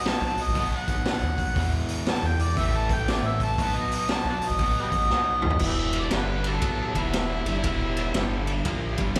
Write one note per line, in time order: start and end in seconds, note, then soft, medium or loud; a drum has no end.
0.00 0.54 B2 medium
0.00 0.56 F#3 medium
0.00 0.57 B3 loud
0.00 0.10 D#5 loud
0.05 0.24 A5 loud
0.05 snare loud
0.05 open hi-hat medium
0.21 0.36 B1 medium
0.26 0.45 A5 medium
0.38 0.46 B1 loud
0.38 open hi-hat medium
0.43 0.58 D#5 medium
0.48 0.69 A1 medium
0.55 1.56 B2 medium
0.55 1.56 F#3 medium
0.55 kick medium
0.55 open hi-hat medium
0.59 1.57 B3 medium
0.59 0.78 D#5 medium
0.77 1.73 F#5 loud
0.88 kick medium
0.88 open hi-hat medium
0.97 1.19 B1 medium
1.05 snare loud
1.05 open hi-hat medium
1.23 1.45 D#2 medium
1.38 kick medium
1.38 open hi-hat medium
1.56 2.56 E2 loud
1.56 1.84 E2 loud
1.56 2.56 B2 loud
1.56 2.57 E3 medium
1.56 kick loud
1.56 open hi-hat medium
1.88 open hi-hat medium
2.06 2.28 A5 loud
2.06 snare loud
2.06 open hi-hat medium
2.23 2.37 E2 medium
2.23 2.44 G5 medium
2.39 2.47 E2 loud
2.39 2.60 D5 medium
2.39 open hi-hat medium
2.47 2.56 E2 medium
2.56 2.93 A1 loud
2.56 3.57 A2 medium
2.56 3.58 E3 loud
2.56 3.59 A3 loud
2.56 2.79 E5 loud
2.56 kick medium
2.56 open hi-hat medium
2.77 2.96 A5 loud
2.89 kick medium
2.89 open hi-hat medium
2.94 3.20 A1 medium
2.94 3.12 G5 medium
3.08 3.28 D5 medium
3.08 snare loud
3.08 open hi-hat medium
3.23 3.45 A2 medium
3.23 3.42 E5 loud
3.40 3.59 A5 loud
3.40 kick medium
3.40 open hi-hat medium
3.58 3.87 B1 loud
3.58 4.57 B2 medium
3.58 4.60 F#3 medium
3.58 4.61 B3 loud
3.58 3.78 A5 loud
3.58 kick loud
3.58 open hi-hat medium
3.77 3.93 D#5 loud
3.91 4.10 D#5 medium
3.91 open hi-hat medium
4.09 4.26 A5 loud
4.09 snare loud
4.09 open hi-hat medium
4.25 4.39 B1 medium
4.29 4.38 D5 medium
4.29 4.36 F#5 medium
4.29 4.49 A5 medium
4.41 4.49 B1 loud
4.41 open hi-hat medium
4.48 4.73 A1 medium
4.48 4.62 D#5 loud
4.58 5.59 B2 medium
4.58 5.61 F#3 medium
4.58 5.61 B3 medium
4.58 kick medium
4.58 open hi-hat medium
4.63 4.78 D#5 loud
4.80 4.89 G4 medium
4.80 4.87 B4 medium
4.80 5.61 D#5 loud
4.92 5.09 A1 medium
4.92 kick medium
4.92 open hi-hat medium
5.10 5.41 B1 medium
5.10 snare medium
5.42 5.60 D#2 medium
5.42 mid tom medium
5.50 floor tom medium
5.59 6.08 E1 medium
5.59 6.10 E2 medium
5.59 6.11 B2 medium
5.59 6.11 E3 loud
5.59 kick loud
5.59 crash loud
5.66 5.73 G4 medium
5.66 5.73 B4 medium
5.66 5.95 E5 medium
5.93 ride medium
5.99 6.18 D5 medium
6.10 6.60 G1 medium
6.10 6.62 G2 medium
6.10 6.61 D3 medium
6.10 6.62 G3 loud
6.10 snare loud
6.10 ride medium
6.16 6.46 B4 medium
6.44 6.54 D4 medium
6.44 6.55 F#4 medium
6.44 7.01 A4 medium
6.44 ride medium
6.61 6.93 B1 medium
6.61 6.94 B2 medium
6.61 6.94 F#3 medium
6.61 6.95 B3 medium
6.61 kick loud
6.61 ride medium
6.95 7.42 E1 medium
6.95 7.45 E2 medium
6.95 7.46 B2 medium
6.95 7.46 E3 medium
6.95 kick medium
6.95 ride medium
7.00 8.46 E4 loud
7.13 snare loud
7.13 ride loud
7.46 7.63 G1 loud
7.46 7.63 G2 medium
7.46 7.65 D3 medium
7.46 7.65 G3 medium
7.46 ride medium
7.64 8.12 E1 medium
7.64 8.14 E2 loud
7.64 8.15 B2 medium
7.64 8.15 E3 loud
7.64 kick loud
7.64 ride loud
7.97 ride medium
8.14 8.62 G1 medium
8.14 8.66 G2 medium
8.14 8.65 D3 medium
8.14 8.65 G3 medium
8.14 snare loud
8.14 ride medium
8.47 ride medium
8.65 8.96 A#1 medium
8.65 8.98 A#2 medium
8.65 8.98 F3 loud
8.65 8.98 A#3 medium
8.65 kick loud
8.65 ride medium
8.97 9.15 G1 loud
8.97 9.16 G2 medium
8.97 9.16 D3 medium
8.97 9.16 G3 medium
8.97 kick medium
8.97 ride medium
9.15 9.20 E1 medium
9.15 snare loud
9.15 ride medium